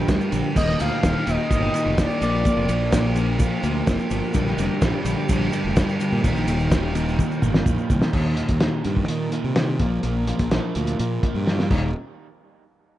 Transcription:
Already playing: A#3 F4 A#4 G5
0.07 D2 G2 D3 G3, kick, snare, ride, shaker
0.21 shaker
0.31 A#1 G2 D3 G3, ride, shaker
0.54 D#1 D#2 A#2 D#3 D#4 D#5, kick, crash, shaker
0.69 snare
0.78 D2 D#2 A#2 D#3 F5, ride, shaker
1.03 D#1 D#2 A#2 D#3, kick, snare, ride, shaker
1.26 D#1 D#2 A#2 D#3 D#5, ride, shaker
1.50 G1 D#2 A#2 D#3, kick, ride, shaker
1.74 D#2 A#2 D#3, ride, shaker
1.86 F1
1.98 D#2 A#2 D#3 D5, kick, snare, ride, shaker
2.10 shaker
2.21 A#1 A#2 F3 A#3 F4 C5 D5, ride, shaker
2.45 A#2 F3 A#3, kick, ride, shaker
2.56 F1
2.68 A#1 A#2 F3 A#3, ride, shaker
2.92 A#2 F3 A#3, kick, snare, ride, shaker
3.15 A#2 F3 A#3, ride, shaker
3.38 A#2 F3 A#3, kick, ride, shaker
3.62 D2 A#2 F3 A#3, ride, shaker
3.86 F1 A#2 F3 A#3, kick, snare, ride, shaker
3.99 shaker
4.10 G1 A#2 F3 A#3, ride, shaker
4.33 A#1 G2 D3 G3 D5 G5, kick, ride, shaker
4.47 snare
4.57 F1 G2 D3 G3, ride, shaker
4.81 A#1 G2 D3 G3, kick, snare, ride, shaker
5.05 A#1 G2 D3 G3, ride, shaker
5.28 A#1 G2 D3 G3, kick, ride, shaker
5.52 G2 D3 G3, ride, shaker
5.64 F1
5.76 G2 D3 G3, kick, snare, ride, shaker
5.89 shaker
5.99 G2 D3 G3, ride, shaker
6.12 A#2
6.22 D#1 D#2 A#2 D#3 D#4 F5 G5, kick, ride, shaker
6.35 A#1, snare, shaker
6.47 D#1 D#2 A#2 D#3, ride, shaker
6.60 shaker
6.70 D#2 A#2 D#3, kick, snare, ride, shaker
6.94 D#2 A#2 D#3, ride, shaker
7.08 shaker
7.18 D#2 A#2 D#3, kick, shaker
7.31 shaker
7.42 G1 D#2 A#2 D#3, mid tom, shaker
7.54 snare, shaker
7.66 A#1 D#2 A#2 D#3, kick, mid tom, shaker
7.78 shaker
7.89 C2 D#2 A#2 D#3, kick, shaker
8.02 snare, shaker
8.13 D#2 A#2 D#3, kick, crash
8.36 D#2 A#2 D#3, closed hi-hat
8.49 D#2, kick, closed hi-hat
8.60 D#2 A#2 D#3, snare, closed hi-hat
8.84 D#2 G2 A#2 D#3, closed hi-hat
8.97 kick
9.08 D#2 A#2 D#3, closed hi-hat
9.31 D#2 A#2 D#3, closed hi-hat
9.44 C3
9.55 D#2 A#2 D#3, snare, closed hi-hat
9.79 A#1 A#2 F3 A#3, kick, closed hi-hat
10.02 A#1 A#2 F3 A#3, closed hi-hat
10.26 A#2 F3 A#3, closed hi-hat
10.39 A#1, kick, closed hi-hat
10.51 A#2 F3 A#3, snare, closed hi-hat
10.75 D2 A#2 F3 A#3, closed hi-hat
10.87 closed hi-hat
10.98 A#2 F3 A#3, closed hi-hat
11.22 A#2 F3 A#3, kick, closed hi-hat
11.35 G2
11.47 A#2 F3 A#3, snare
11.59 snare
11.70 D#1 D#2 A#2 D#3 G3 A#3 D#4, kick, crash

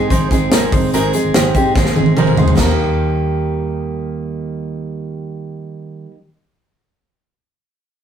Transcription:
Already playing: C4 D#4 G#4
0.10 G#1 G#3 C4 D#4 G#4 C5, kick, closed hi-hat
0.31 G#1 G#3 C4 D#4 G#4, kick, closed hi-hat
0.52 G#1 G#2 D#3 G#3 C4 D#4 G#4 A#4, snare, closed hi-hat
0.72 G1 G#3 C4 D#4 G#4 C5, kick, open hi-hat
0.93 G#1 G#2 D#3 G#3 C4 D#4 G#4 A#4, closed hi-hat
1.13 G#3 C4 D#4 G#4, closed hi-hat
1.24 G#1
1.34 G#1 G#2 D#3 G#3 C4 D#4 G4 G#4, snare, closed hi-hat
1.55 G#2 G#3 C4 D#4 G4 G#4, kick, closed hi-hat
1.76 G#1 G#3 C4 D#4 G#4, kick, snare
1.85 snare
1.96 G#1 G#3 C4 D#4 G#4, high tom
2.06 high tom
2.17 G#1 G#2 D#3 G#3 C4 D#4 G#4 A#4, mid tom
2.27 mid tom
2.37 D2 G#3 C4 D#4 G#4 C5, floor tom
2.48 floor tom
2.55 D#3, kick, snare, china
2.60 G3 A#4
2.64 A#3 D#4
2.71 G4

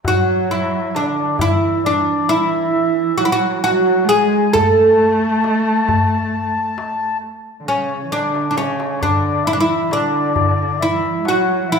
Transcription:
0.05 F#3 F#4 F#5, darbuka dum
0.49 E4 E5, darbuka ka
0.95 D3 D4 D5, darbuka tek
1.17 darbuka ka
1.39 E3 E4 E5, darbuka dum
1.84 D4 D5, darbuka ka
2.28 E3 E4 E5
2.74 darbuka ka
3.18 F#3 F#4 F#5, darbuka ka
3.25 E4
3.32 F#3 F#4 F#5
3.64 F#3 F#4 F#5, darbuka tek
4.04 A3 G#5
4.08 G#3 G#4
4.52 A3 A4 A5, darbuka dum
5.00 darbuka ka
5.44 darbuka tek
5.89 darbuka dum
6.34 darbuka ka
6.78 darbuka tek
7.23 darbuka ka
7.60 D3
7.65 C#3 C#4 C#5, darbuka ka
8.03 E3
8.10 D3 D4 D5, darbuka tek
8.35 darbuka ka
8.49 D4 D5
8.55 C#3 C#4 C#5, darbuka tek
8.80 darbuka ka
8.99 D3 D4 D5, darbuka dum
9.44 E3 E4 E5
9.48 darbuka ka
9.53 D4
9.60 E4 E5
9.90 D3 D4 D5, darbuka tek
10.14 darbuka ka
10.36 darbuka dum
10.78 E3 E5, darbuka ka
10.82 E4
11.17 G#3
11.24 F#3 F#5, darbuka tek
11.28 F#4
11.68 E3 E4 E5

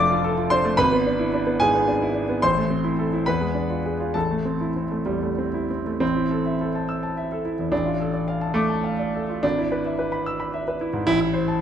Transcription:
Already playing: F1 F2 A3 D4 F4 A4 D5 E5 D6 E6
0.10 F4
0.24 A4
0.37 F4
0.50 D4 C5 C6
0.65 A3
0.77 G#1 B4 B5
0.93 B3
1.06 D4
1.19 E4
1.34 D4
1.47 B3
1.60 G#2 G#4 G#5
1.75 B3
1.88 D4
2.02 E4
2.14 D4
2.29 B3
2.42 A1 C5 C6
2.58 A3
2.71 C4
2.84 E4
2.99 A4
3.13 E4
3.26 E2 B4 B5
3.41 G#3
3.54 D4
3.70 F4
3.85 G#4
4.00 F4
4.14 A1 A4 A5
4.31 A3
4.45 C4
4.61 E4
4.76 C4
4.91 A3
5.06 E2 G3
5.22 A3
5.38 C4
5.54 E4
5.70 C4
5.86 A3
6.00 A1 C4
6.16 E4
6.31 A4
6.46 E5
6.61 A4
6.75 A5
6.89 E6
7.03 A5
7.17 E5
7.32 A4
7.45 E4
7.59 E2
7.72 A1 D4
7.86 F4
8.00 A4
8.13 D5
8.28 F5
8.41 A5
8.54 A3 D6
8.70 A5
8.84 F5
8.99 D5
9.15 A4
9.29 F4
9.43 G#1 D4
9.58 E4
9.72 B4
9.85 E5
9.99 B4
10.12 B5
10.26 E6
10.40 B5
10.54 E5
10.68 B4
10.81 E4
10.93 G#2
11.07 A1 E4
11.20 E4
11.33 C5
11.48 A5

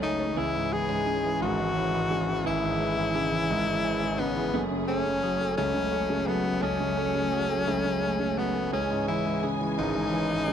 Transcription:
Already playing: C#2 C#3 F#3 A3 C#4 G#4
0.02 A3 D#4
0.20 C#4
0.37 C#2 E3 G#3 E4 G#4
0.55 G#2
0.72 E3 B3 G#4
0.89 G#2 C#4
1.06 C#3 G#4
1.24 E3
1.41 G#1 G#2 G#3 F#4
1.60 G#2
1.76 E3 C#4
1.94 G#2
2.11 C#3 G#3
2.29 E3
2.46 G#1 E3 E4 G#4
2.63 G#2
2.81 E3 C#4
2.98 G#2
3.15 C#3 G#4
3.32 E3
3.50 G#1 G#2 G#3
3.68 G#2
3.84 E3 C#4
4.02 G#2
4.19 C#3 G#3 B3
4.37 E3
4.53 F#1 F#2 F#3 A3 C#4 G#4
4.71 C#3
4.88 A3 C#4
5.06 C#3
5.23 F#3 G#4
5.41 A3
5.57 C#2 C#3 A3 C#4
5.75 C#3
5.92 A3 C#4
6.10 C#3
6.27 F#3 A3 B3
6.45 A3
6.62 C#2 A3 C#4 G#4
6.80 C#3
6.97 A3 C#4
7.15 C#3
7.32 F#3 G#4
7.49 A3
7.67 C#2 C#3 A3
7.85 C#3
8.02 A3 C#4
8.20 C#3
8.37 F#3 A3 B3
8.55 A3
8.72 C#2 E3 G#3 C#4 G#4 G#5
8.91 G#2
9.08 E3 C#4 E4
9.26 G#2
9.43 C#3 G#4
9.61 E3
9.78 G#1 G#2 G#3 D#4
9.95 G#2
10.13 E3 C#4
10.30 G#2
10.48 C#3 G#3

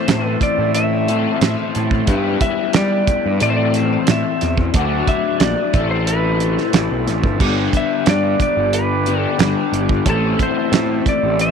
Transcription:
Already playing: A2 E3 C4 E4 A4 C5 E5 A5 C6
0.08 A2, snare, closed hi-hat
0.24 B4
0.41 D5, kick, closed hi-hat
0.58 A2
0.75 E5, closed hi-hat
1.07 A2 E3 C4 E4 A4, closed hi-hat
1.41 A2 E3 C4 E4 A4, snare, closed hi-hat
1.75 A2, closed hi-hat
1.91 kick
2.06 G2 G3 B3 E4 G4 B4 G5 B5, kick, closed hi-hat
2.41 E5, kick, closed hi-hat
2.73 G3 D5, snare, closed hi-hat
3.07 kick, closed hi-hat
3.26 G2
3.39 A2 E3 C4 E4 C5 D5 A5 C6, closed hi-hat
3.43 A4
3.50 C5
3.57 D5
3.74 C5, closed hi-hat
4.07 A2 E5, snare, closed hi-hat
4.41 E2, snare, closed hi-hat
4.57 kick
4.74 D2 D3 F#3 A3 D4 F#4 B4 D5 F#5, kick, closed hi-hat
5.07 E5, kick, closed hi-hat
5.40 A#1 D5, snare, closed hi-hat
5.73 A1 A2 E3 C4 E4 A4 E5 A5, kick, closed hi-hat
5.91 C5
6.07 B4, closed hi-hat
6.40 closed hi-hat
6.58 snare
6.73 A1, snare, closed hi-hat
6.91 B1
7.07 A1, snare, closed hi-hat
7.24 G1, kick
7.39 G1 G2 D3 G3 B3 D4 G4 B4 D5 G5, kick, crash
7.73 E5, kick, closed hi-hat
8.06 G2 D5, snare, closed hi-hat
8.40 D5, kick, closed hi-hat
8.57 G1
8.73 B4, closed hi-hat
9.06 G2 D3 G3 B3 D4 G4, closed hi-hat
9.21 A4
9.38 G1 G2 D3 G3 B3 D4 G4, snare, closed hi-hat
9.72 G1, closed hi-hat
9.89 kick
10.05 A1 A2 E3 C4 E4 A4 C5 E5, kick, closed hi-hat
10.10 A4
10.39 C5, kick, closed hi-hat
10.72 A2, snare, closed hi-hat
11.06 D5, kick, closed hi-hat
11.23 A1
11.39 E5, closed hi-hat

